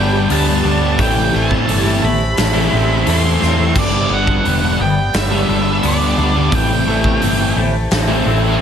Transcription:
Already playing: G1 G2 D3 G3 B3 D4 G4 D5 G5 B5
0.29 D2 G2 D3 G3 B3 D4 A5, open hi-hat
0.47 D3 G3 B3 D4
0.64 D2 G2 D3 G3 B3 D4
0.81 D3 G3 B3 D4
0.98 A1 A2 E3 A3 C4 E4 C5 E5 G5 A5, kick, open hi-hat
1.16 E3 A3
1.32 A1 A2 E3 A3 C4 E4 A5
1.51 kick
1.66 G1 A2 E3 A3 C4 E4, open hi-hat
1.84 A3 C4 E4
1.88 E3
2.02 A1 A3 B5, muted overdriven electric guitar stroke, muted distorted electric guitar stroke
2.37 A1 E3, snare, open hi-hat
2.53 E3 A3 C4 E4
2.71 A1 A2 E3 A3 C4 E4
3.05 E2 A2 E3 A3 C4 E4, open hi-hat
3.10 C6
3.24 E3 A3 C4 E4
3.40 E2 A2 E3 A3 C4 E4, snare
3.58 E3 A3 C4 E4
3.75 G1 G2 D3 G3 B3 D4 D5 B5, kick, crash
3.92 D3 G3
4.10 G1 G2 D3 G3 B3 D4 F#5
4.27 kick
4.44 E1 G2 D3 G3 B3 D4, open hi-hat
4.62 D3 G3 B3 D4
4.79 G1 B3 G5, muted overdriven electric guitar stroke, muted distorted electric guitar stroke
5.14 G1 E5, snare, open hi-hat
5.30 D3 G3 B3 D4
5.47 G1 G2 D3 G3 B3 D4
5.82 D2 G2 D3 G3 B3 D4, open hi-hat
5.87 D5
6.00 D3 G3 B3 D4
6.16 D2 G2 D3 G3 B3 D4
6.34 D3 G3 B3 D4
6.51 A1 A2 E3 A3 C4 E4 C5 E5 A5, kick, open hi-hat
6.55 G5
6.69 E3 A3
6.86 A1 A2 E3 A3 C4 E4
7.04 kick
7.20 G1 A2 E3 A3 C4 E4, open hi-hat
7.38 E3 A3 C4 E4
7.56 A1 A3, muted overdriven electric guitar stroke, muted distorted electric guitar stroke
7.91 A1 E3, snare, open hi-hat
8.08 E3 A3 C4 E4
8.24 A1 A2 E3 A3 C4 E4

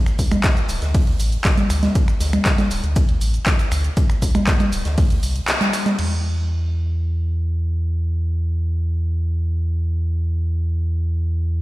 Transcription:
0.06 finger snap, shaker
0.19 D2, kick, open hi-hat, shaker
0.32 finger snap, closed hi-hat, low conga, shaker
0.43 kick, snare, clap, closed hi-hat, ride, shaker
0.57 closed hi-hat, shaker
0.68 D1, open hi-hat, shaker
0.82 D2, snare, closed hi-hat, shaker
0.94 kick, closed hi-hat, open hi-hat, ride, shaker
1.07 D2, closed hi-hat
1.20 A1, open hi-hat, shaker
1.32 closed hi-hat, shaker
1.45 kick, snare, clap, closed hi-hat, ride, shaker
1.57 closed hi-hat, low conga, shaker
1.70 D2, finger snap, open hi-hat, shaker
1.83 snare, closed hi-hat, low conga, shaker
1.95 kick, closed hi-hat, ride, shaker
2.08 finger snap, shaker
2.20 D2, snare, open hi-hat, shaker
2.33 finger snap, closed hi-hat, low conga, shaker
2.45 kick, snare, clap, closed hi-hat, ride, shaker
2.58 snare, closed hi-hat, low conga, shaker
2.71 D1, open hi-hat, shaker
2.84 D2, closed hi-hat, shaker
2.96 kick, closed hi-hat, ride, shaker
3.09 D2, closed hi-hat
3.21 A1, open hi-hat, shaker
3.34 closed hi-hat, shaker
3.46 kick, snare, clap, closed hi-hat, ride, shaker
3.59 closed hi-hat, shaker
3.71 D2, finger snap, open hi-hat, shaker
3.84 closed hi-hat, shaker
3.97 kick, closed hi-hat, ride, shaker
4.10 finger snap, shaker
4.22 D2, kick, open hi-hat, shaker
4.35 finger snap, closed hi-hat, low conga, shaker
4.47 kick, snare, clap, closed hi-hat, ride, shaker
4.60 closed hi-hat, low conga, shaker
4.73 D1, open hi-hat, shaker
4.85 D2, snare, closed hi-hat, shaker
4.98 kick, open hi-hat, ride, shaker
5.10 D2, closed hi-hat, shaker
5.23 C2, open hi-hat, shaker
5.36 closed hi-hat, shaker
5.48 snare, clap, closed hi-hat, ride, shaker
5.61 closed hi-hat, low conga, shaker
5.73 finger snap, open hi-hat, shaker
5.86 snare, closed hi-hat, low conga, shaker
5.99 E2, crash

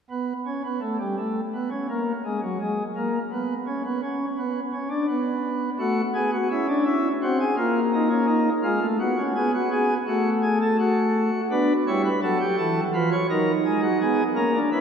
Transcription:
0.10 B3
0.46 C#4
0.65 B3
0.81 A3
0.99 G3
1.18 A3
1.54 B3
1.70 C#4
1.90 A#3
2.25 G#3
2.42 F#3
2.61 G#3
2.96 A#3
3.32 B3
3.67 C#4
3.85 B3
4.03 C#4
4.38 B3
4.73 C#4
4.90 D4
5.08 B3
5.79 A3 F#4
6.14 B3 G#4
6.33 F#4
6.51 C#4 E4
6.68 D4
6.86 E4
7.22 C4 F#4
7.40 G#4
7.57 A#3 F4
7.93 D#4
8.10 C#4
8.27 D#4
8.63 G#3 F4
8.82 A3
9.00 B3 F#4
9.18 C#4
9.36 B3 G#4
9.54 F#4
9.72 G#4
10.07 A3 F#4
10.43 G#4
10.62 A4
10.79 F#4
11.51 B3 D4 B4
11.87 G3 E4 C#5
12.05 B4
12.22 F#3 F#4 A4
12.41 G4
12.58 E3 A4
12.93 F3 F4 B4
13.12 C#5
13.30 F#3 D#4 A#4
13.65 G#3 G#4
13.83 F#4
14.01 B3 G#4
14.35 A#3 C#4 A#4
14.54 D4
14.72 C#4 E4 B4

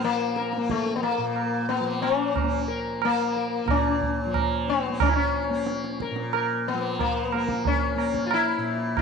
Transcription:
Already playing: A#2 F3 A#3
0.04 A#3
0.36 A#4, tabla te
0.53 tabla te
0.57 A#3
0.70 A3, tabla ke
0.86 tabla te
0.96 B3
1.03 A#3, tabla tin
1.18 A#2
1.36 tabla na
1.69 B3, tabla tin
1.80 F3
2.02 C#4, tabla na
2.36 tabla na, tabla ge
2.43 A#3
2.68 A#4
3.02 A#3, tabla na
3.36 A#4
3.65 A#2, tabla na, tabla ge
3.70 C#4
4.01 tabla ge
4.26 F3
4.34 tabla na, tabla ge
4.68 B3, tabla te
4.89 A#3
5.00 C#4, tabla na, tabla ge
5.08 E4
5.16 C#4
5.50 A#3
5.67 tabla te
5.84 tabla te
6.00 A#4, tabla ke
6.11 A#2
6.16 tabla te
6.33 A#4, tabla na
6.68 B3
6.73 F3
6.99 A#3, tabla tin, tabla ge
7.32 A#3 A#4, tabla na
7.48 tabla ke
7.65 C#4, tabla tin, tabla ge
7.96 A#3, tabla na
8.14 tabla ke
8.27 F4
8.31 E4, tabla na
8.58 A#2
8.97 tabla na, tabla ge

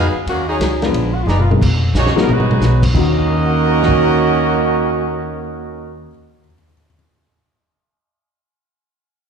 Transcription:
Already playing: F2 F#3 B3 D#4 G#4
0.14 muted upright bass stroke
0.26 D#2 D#3 A#3 C#4 F#4, ride
0.48 F#3 C#4 D#4 F#4 G#4 C#5 D#5 A#5
0.60 C#2, snare, hi-hat pedal, ride
0.81 G#2 D3 F3 G#3 B3 D4 F4 A#4, snare, ride
0.92 A#1, ride
1.13 F#4
1.22 F#1 F4
1.27 D#4 G#4 B4 D5 A#5, snare, hi-hat pedal
1.40 F4, mid tom
1.50 G#3 B3 D#4 F4 A#4, mid tom
1.61 F1, kick, crash
1.93 A#1 A#3 C#4 D#4 F#4 C#5, snare, hi-hat pedal
2.07 snare
2.16 F#3 G#3 A#3 B3 D#4 F#4 A#4, snare
2.28 G#1 D#3 F#3 G#3 B3 D#4 F#4 B4, mid tom
2.40 mid tom
2.51 mid tom
2.61 B1, snare, hi-hat pedal
2.83 kick, crash
2.94 D#2 D#3 A#3 C#4 D#4 F#4 A#4 D#5, kick, crash
3.30 A#4
3.37 D#5
3.45 F#5
3.64 D#6
3.75 F#6
3.83 snare
3.87 A#6, kick

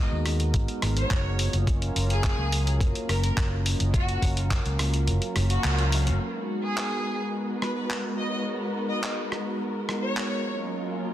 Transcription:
Already playing: G#3 B3 D#4 F#4 A#4
0.12 D#2
0.26 cross-stick, open hi-hat
0.40 closed hi-hat
0.54 G#1, kick, closed hi-hat
0.68 closed hi-hat
0.82 G#1, cross-stick, open hi-hat
0.96 C#5, closed hi-hat
1.11 F#1, kick, clap, closed hi-hat
1.39 F#3 A#3 C#4 F4 D#5, open hi-hat
1.53 F#1, closed hi-hat
1.67 F#3 A#3 C#4 F4 A#4, kick, closed hi-hat
1.82 closed hi-hat
1.96 F#1, open hi-hat
2.10 G#4, closed hi-hat
2.24 kick, clap, closed hi-hat
2.38 C#2
2.52 open hi-hat
2.67 closed hi-hat
2.80 F#1, kick, closed hi-hat
2.95 closed hi-hat
3.09 F#1 A#4, cross-stick, open hi-hat
3.23 A#4, closed hi-hat
3.37 F#1, kick, clap, closed hi-hat
3.65 F#3 A#3 C#4 F4 D#5, open hi-hat
3.80 F#1, closed hi-hat
3.93 F#3 A#3 C#4 F4 F#4 A#4, kick, closed hi-hat
4.09 closed hi-hat
4.22 F#1, kick, open hi-hat
4.37 closed hi-hat
4.50 kick, clap, closed hi-hat
4.65 C#2, closed hi-hat
4.79 cross-stick, open hi-hat
4.94 closed hi-hat
5.07 F#1, closed hi-hat
5.22 closed hi-hat
5.36 F#1, cross-stick, open hi-hat
5.49 F#3 A#3 C#4 F#4 A#4 F5, closed hi-hat
5.64 C#2, clap, closed hi-hat
5.79 closed hi-hat
5.92 open hi-hat
6.07 F#1, closed hi-hat
6.20 G#3 B3 D#4 F#4 A#4
6.63 G#4
6.77 clap
7.62 B4, cross-stick
7.77 B4
7.90 clap
8.18 G#3 B3 D#4 F#4 C#5 D#5
8.33 D#5
8.46 G#3 B3 D#4 F#4 A#4
8.90 D#5
9.03 D#5, clap
9.32 cross-stick
9.89 cross-stick
10.03 C#5
10.17 clap
10.45 F#3 A#3 C#4 F4 D#5
10.72 F#3 A#3 C#4 F4 A#4

